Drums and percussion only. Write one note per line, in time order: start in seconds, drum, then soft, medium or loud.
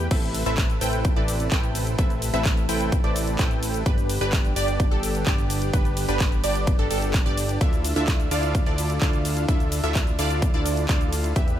0.11 kick loud
0.11 closed hi-hat medium
0.11 crash loud
0.11 ride medium
0.11 shaker soft
0.23 closed hi-hat soft
0.23 shaker soft
0.34 open hi-hat loud
0.34 ride medium
0.34 shaker medium
0.46 closed hi-hat medium
0.46 shaker soft
0.58 kick loud
0.58 clap loud
0.58 closed hi-hat medium
0.58 ride medium
0.58 shaker soft
0.70 closed hi-hat soft
0.70 shaker soft
0.81 open hi-hat loud
0.81 ride medium
0.81 shaker medium
0.93 closed hi-hat medium
0.93 shaker soft
1.05 kick loud
1.05 closed hi-hat medium
1.05 ride medium
1.05 shaker soft
1.16 closed hi-hat soft
1.28 open hi-hat loud
1.28 ride medium
1.28 shaker medium
1.40 closed hi-hat medium
1.40 shaker soft
1.52 kick loud
1.52 clap loud
1.52 closed hi-hat medium
1.52 ride medium
1.52 shaker soft
1.63 closed hi-hat soft
1.63 shaker soft
1.75 open hi-hat loud
1.75 ride medium
1.75 shaker medium
1.87 closed hi-hat medium
1.87 shaker soft
1.99 kick loud
1.99 closed hi-hat medium
1.99 ride medium
1.99 shaker soft
2.10 closed hi-hat soft
2.10 shaker soft
2.22 open hi-hat loud
2.22 ride medium
2.22 shaker medium
2.34 closed hi-hat medium
2.34 shaker soft
2.45 kick loud
2.45 clap loud
2.45 closed hi-hat medium
2.45 ride medium
2.45 shaker soft
2.57 closed hi-hat soft
2.57 shaker soft
2.69 open hi-hat loud
2.69 ride medium
2.69 shaker medium
2.81 closed hi-hat medium
2.81 shaker soft
2.92 kick loud
2.92 closed hi-hat medium
2.92 ride medium
2.92 shaker soft
3.04 closed hi-hat soft
3.16 open hi-hat loud
3.16 ride medium
3.16 shaker medium
3.27 closed hi-hat medium
3.27 shaker soft
3.39 kick loud
3.39 clap loud
3.39 closed hi-hat medium
3.39 ride medium
3.39 shaker soft
3.51 closed hi-hat soft
3.51 shaker soft
3.63 open hi-hat loud
3.63 ride medium
3.63 shaker medium
3.74 closed hi-hat medium
3.74 shaker soft
3.86 kick loud
3.86 closed hi-hat medium
3.86 ride medium
3.86 shaker soft
3.98 closed hi-hat soft
3.98 shaker soft
4.09 open hi-hat loud
4.09 ride medium
4.09 shaker medium
4.21 closed hi-hat medium
4.21 shaker soft
4.33 kick loud
4.33 clap loud
4.33 closed hi-hat medium
4.33 ride medium
4.33 shaker soft
4.45 closed hi-hat soft
4.45 shaker soft
4.56 open hi-hat loud
4.56 ride medium
4.56 shaker medium
4.68 closed hi-hat medium
4.68 shaker soft
4.80 kick loud
4.80 closed hi-hat medium
4.80 ride medium
4.80 shaker soft
4.92 closed hi-hat soft
5.03 open hi-hat loud
5.03 ride medium
5.03 shaker medium
5.15 closed hi-hat medium
5.15 shaker soft
5.26 kick loud
5.26 clap loud
5.26 closed hi-hat medium
5.26 ride medium
5.26 shaker soft
5.38 closed hi-hat soft
5.38 shaker soft
5.50 open hi-hat loud
5.50 ride medium
5.50 shaker medium
5.62 closed hi-hat medium
5.62 shaker soft
5.74 kick loud
5.74 closed hi-hat medium
5.74 ride medium
5.74 shaker soft
5.85 closed hi-hat soft
5.85 shaker soft
5.97 open hi-hat loud
5.97 ride medium
5.97 shaker medium
6.09 closed hi-hat medium
6.09 shaker soft
6.20 kick loud
6.20 clap loud
6.20 closed hi-hat medium
6.20 ride medium
6.20 shaker soft
6.32 closed hi-hat soft
6.32 shaker soft
6.44 open hi-hat loud
6.44 ride medium
6.44 shaker medium
6.55 closed hi-hat soft
6.55 shaker soft
6.67 kick loud
6.67 closed hi-hat medium
6.67 ride medium
6.67 shaker soft
6.79 closed hi-hat soft
6.91 open hi-hat loud
6.91 ride medium
6.91 shaker medium
7.02 closed hi-hat soft
7.02 shaker soft
7.14 kick loud
7.14 clap loud
7.14 closed hi-hat medium
7.14 ride medium
7.14 shaker soft
7.26 closed hi-hat soft
7.26 shaker soft
7.38 open hi-hat loud
7.38 ride medium
7.38 shaker medium
7.49 closed hi-hat medium
7.49 shaker soft
7.61 kick loud
7.61 closed hi-hat medium
7.61 ride medium
7.61 shaker soft
7.73 closed hi-hat soft
7.73 shaker soft
7.85 open hi-hat loud
7.85 ride medium
7.85 shaker medium
7.96 closed hi-hat medium
7.96 shaker soft
8.08 kick loud
8.08 clap loud
8.08 closed hi-hat medium
8.08 ride medium
8.08 shaker soft
8.20 closed hi-hat soft
8.20 shaker soft
8.31 open hi-hat loud
8.31 ride medium
8.31 shaker medium
8.43 closed hi-hat soft
8.43 shaker soft
8.55 kick loud
8.55 closed hi-hat medium
8.55 ride medium
8.55 shaker soft
8.66 closed hi-hat soft
8.78 open hi-hat loud
8.78 ride medium
8.78 shaker medium
8.90 closed hi-hat medium
8.90 shaker soft
9.01 kick loud
9.01 clap loud
9.01 closed hi-hat medium
9.01 ride medium
9.01 shaker soft
9.13 closed hi-hat soft
9.13 shaker soft
9.25 open hi-hat loud
9.25 ride medium
9.25 shaker medium
9.37 closed hi-hat medium
9.37 shaker soft
9.49 kick loud
9.49 closed hi-hat medium
9.49 ride medium
9.49 shaker soft
9.60 closed hi-hat soft
9.60 shaker soft
9.72 open hi-hat loud
9.72 ride medium
9.72 shaker medium
9.84 closed hi-hat medium
9.84 shaker soft
9.95 kick loud
9.95 clap loud
9.95 closed hi-hat medium
9.95 ride medium
9.95 shaker medium
10.07 closed hi-hat soft
10.07 shaker soft
10.19 open hi-hat loud
10.19 ride medium
10.19 shaker medium
10.31 closed hi-hat medium
10.31 shaker soft
10.42 kick loud
10.42 closed hi-hat medium
10.42 ride medium
10.42 shaker soft
10.54 closed hi-hat soft
10.66 open hi-hat loud
10.66 ride medium
10.66 shaker medium
10.77 closed hi-hat medium
10.77 shaker soft
10.89 kick loud
10.89 clap loud
10.89 closed hi-hat medium
10.89 ride medium
10.89 shaker soft
11.01 closed hi-hat soft
11.01 shaker soft
11.13 open hi-hat loud
11.13 ride medium
11.13 shaker medium
11.24 closed hi-hat medium
11.24 shaker soft
11.36 kick loud
11.36 closed hi-hat medium
11.36 ride medium
11.36 shaker soft
11.48 closed hi-hat soft
11.48 shaker soft